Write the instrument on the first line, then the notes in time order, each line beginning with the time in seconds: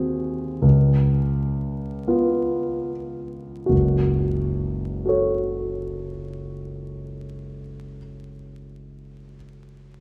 grand piano
Already playing: D#2 C4 F#4 G#4
0.62 C#2
2.08 B3 F4
3.66 F#1 C#2 F#4
5.06 F#4 A4 C#5